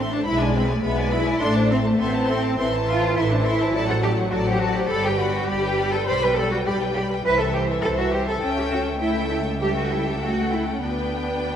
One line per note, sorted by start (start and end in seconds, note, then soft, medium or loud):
0.00 0.20 A1 medium
0.00 0.26 A3 medium
0.00 0.14 A4 medium
0.00 0.14 E5 medium
0.00 0.12 C6 medium
0.12 0.27 D4 medium
0.12 0.28 C5 medium
0.12 0.26 A5 medium
0.25 0.77 B1 medium
0.25 0.82 G#3 medium
0.25 0.40 E4 medium
0.25 0.41 B4 medium
0.25 0.41 E5 medium
0.25 0.39 B5 medium
0.41 0.55 D4 medium
0.41 0.56 D5 medium
0.41 0.55 G#5 medium
0.55 0.69 C4 medium
0.55 0.70 B4 medium
0.55 0.70 E5 medium
0.55 0.69 B5 medium
0.68 0.84 A3 medium
0.68 0.85 D5 medium
0.68 0.83 G#5 medium
0.82 1.34 B1 medium
0.82 1.40 G#3 medium
0.82 1.12 B3 medium
0.82 0.98 B4 medium
0.82 0.98 E5 medium
0.82 0.96 B5 medium
0.97 1.12 D5 medium
0.97 1.12 G#5 medium
1.11 1.42 E4 medium
1.11 1.28 B4 medium
1.11 1.27 E5 medium
1.11 1.26 B5 medium
1.26 1.41 D5 medium
1.26 1.41 G#5 medium
1.39 1.93 A1 medium
1.39 1.99 A3 medium
1.39 1.71 D4 medium
1.39 1.54 A4 medium
1.39 1.55 E5 medium
1.39 1.54 C6 medium
1.55 1.71 C5 medium
1.55 1.70 A5 medium
1.69 1.77 C4 medium
1.69 1.85 A4 medium
1.69 1.85 E5 medium
1.69 1.85 C6 soft
1.84 2.00 A3 medium
1.84 1.99 C5 medium
1.84 2.00 A5 medium
1.98 2.52 A1 medium
1.98 2.29 B3 medium
1.98 2.57 C4 medium
1.98 2.13 A4 medium
1.98 2.13 E5 medium
1.98 2.13 C6 medium
2.13 2.29 C5 medium
2.13 2.29 A5 medium
2.27 2.57 C4 medium
2.27 2.44 A4 medium
2.27 2.44 E5 medium
2.27 2.43 C6 medium
2.42 2.58 C5 medium
2.42 2.57 A5 medium
2.57 3.10 A1 medium
2.57 3.72 E3 medium
2.57 2.67 C4 medium
2.57 2.72 A4 medium
2.57 2.72 E5 medium
2.57 2.71 C6 medium
2.73 2.88 C5 medium
2.73 2.88 A5 medium
2.87 3.16 F4 medium
2.87 3.02 A4 medium
2.87 3.02 E5 medium
2.87 3.02 C6 medium
3.01 3.16 C5 medium
3.01 3.16 A5 medium
3.16 3.68 A1 medium
3.16 3.31 E4 medium
3.16 3.30 A4 medium
3.16 3.30 E5 medium
3.16 3.30 C6 medium
3.31 3.45 D4 medium
3.31 3.45 C5 medium
3.31 3.45 A5 medium
3.44 3.74 E4 medium
3.44 3.60 A4 medium
3.44 3.60 E5 medium
3.44 3.59 C6 medium
3.60 3.75 C5 medium
3.60 3.72 A5 medium
3.74 4.26 A1 medium
3.74 4.91 F#3 medium
3.74 3.88 A4 medium
3.74 3.88 D5 medium
3.74 3.88 A5 medium
3.87 3.95 A4 medium
3.87 4.03 C5 medium
3.87 4.03 F#5 medium
4.02 4.11 G4 medium
4.02 4.18 A4 medium
4.02 4.18 D5 medium
4.02 4.17 A5 soft
4.17 4.33 C5 medium
4.17 4.32 F#5 soft
4.31 4.84 A1 medium
4.31 4.37 F#4 medium
4.31 4.47 A4 medium
4.31 4.47 D5 medium
4.31 4.46 A5 medium
4.45 4.62 G4 medium
4.45 4.63 C5 medium
4.45 4.61 F#5 medium
4.60 4.76 F#4 medium
4.60 4.77 A4 medium
4.60 4.77 D5 medium
4.60 4.76 A5 medium
4.76 4.91 G4 medium
4.76 4.92 C5 medium
4.76 4.91 F#5 medium
4.88 5.43 G1 medium
4.88 7.21 G3 medium
4.88 5.05 A4 loud
4.88 5.03 B5 medium
4.92 5.05 G4 medium
4.92 5.05 D5 medium
5.04 5.20 G4 medium
5.04 5.21 B4 medium
5.04 5.19 G5 medium
5.19 5.49 F#4 medium
5.19 5.35 G4 medium
5.19 5.35 D5 medium
5.19 5.34 B5 medium
5.35 5.50 B4 medium
5.35 5.49 G5 medium
5.48 6.01 G1 medium
5.48 5.92 G4 medium
5.48 5.63 G4 medium
5.48 5.63 D5 medium
5.48 5.63 B5 soft
5.63 5.78 B4 medium
5.63 5.79 G5 medium
5.78 5.93 G4 medium
5.78 5.93 D5 medium
5.78 5.93 B5 medium
5.92 6.07 A4 medium
5.92 6.07 B4 medium
5.92 6.08 G5 medium
6.06 6.60 B1 medium
6.06 6.21 G4 medium
6.06 6.21 C5 loud
6.06 6.21 D5 medium
6.06 6.22 B5 medium
6.20 6.36 B4 medium
6.20 6.37 B4 medium
6.20 6.37 G5 medium
6.35 6.51 G4 soft
6.35 6.52 A4 medium
6.35 6.51 D5 soft
6.35 6.52 B5 soft
6.51 6.58 F#4 medium
6.51 6.66 B4 medium
6.51 6.66 G5 medium
6.65 7.19 B1 medium
6.65 6.80 G4 medium
6.65 6.74 G4 medium
6.65 6.80 D5 medium
6.65 6.81 B5 medium
6.80 6.96 B4 medium
6.80 6.96 G5 soft
6.94 7.10 G4 medium
6.94 7.04 G4 medium
6.94 7.10 D5 medium
6.94 7.10 B5 medium
7.11 7.25 B4 soft
7.11 7.26 G5 medium
7.25 7.77 C2 medium
7.25 8.40 E3 medium
7.25 7.40 B4 loud
7.25 7.38 C5 medium
7.25 7.39 C5 medium
7.25 7.39 E5 medium
7.39 7.54 A4 medium
7.39 7.55 A4 medium
7.39 7.54 C5 medium
7.39 7.55 E5 medium
7.54 7.62 G4 medium
7.54 7.68 C5 medium
7.54 7.69 C5 medium
7.54 7.70 E5 medium
7.69 7.84 A4 soft
7.69 7.83 C5 medium
7.69 7.84 E5 medium
7.83 8.36 C2 medium
7.83 7.89 A4 medium
7.83 7.96 C5 medium
7.83 7.98 C5 soft
7.83 7.98 E5 medium
7.98 8.13 F#4 medium
7.98 8.13 A4 medium
7.98 8.11 C5 medium
7.98 8.14 E5 soft
8.12 8.28 G4 medium
8.12 8.27 C5 medium
8.12 8.28 C5 medium
8.12 8.27 E5 medium
8.28 8.41 A4 medium
8.28 8.42 A4 medium
8.28 8.42 C5 medium
8.28 8.42 E5 soft
8.42 10.79 C#2 medium
8.42 9.00 C#4 medium
8.42 8.97 A4 medium
8.42 8.97 E5 medium
8.42 8.97 G5 medium
8.57 8.63 G4 medium
8.71 8.79 F#4 medium
9.00 9.60 A3 medium
9.00 9.29 E4 medium
9.00 9.60 A4 medium
9.00 9.60 E5 medium
9.00 9.59 G5 medium
9.30 9.38 E4 medium
9.61 10.20 G3 medium
9.61 9.75 G4 medium
9.61 10.81 A4 medium
9.61 10.20 E5 medium
9.61 10.80 G5 soft
9.77 9.91 F#4 medium
9.91 10.06 E4 medium
10.06 10.22 G4 medium
10.21 10.82 A3 medium
10.21 10.52 F#4 medium
10.21 10.83 F#5 soft
10.52 10.68 E4 medium
10.69 10.83 C#4 medium
10.82 11.56 D2 medium
10.82 11.56 B3 medium
10.82 11.56 D4 medium
10.82 11.56 B4 medium
10.82 11.56 G5 medium